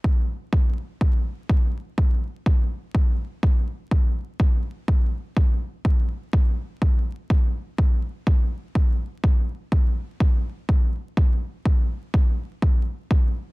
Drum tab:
BD |o-o-o-o-|o-o-o-o-|o-o-o-o-|o-o-o-o-|

BD |o-o-o-o-|o-o-o-o-|o-o-o-o-|